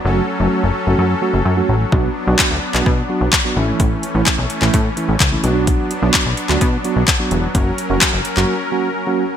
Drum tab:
HH |----------------|----------------|x-x-x-x-x-x-x-x-|x-x-x-x-x-x-x-x-|
CP |----------------|----x--x----x---|----x--x----x---|----x--x----x---|
BD |----------------|o---o---o---o---|o---o---o---o---|o---o---o---o---|

HH |x-x-x-x---------|
CP |----x--x--------|
BD |o---o-----------|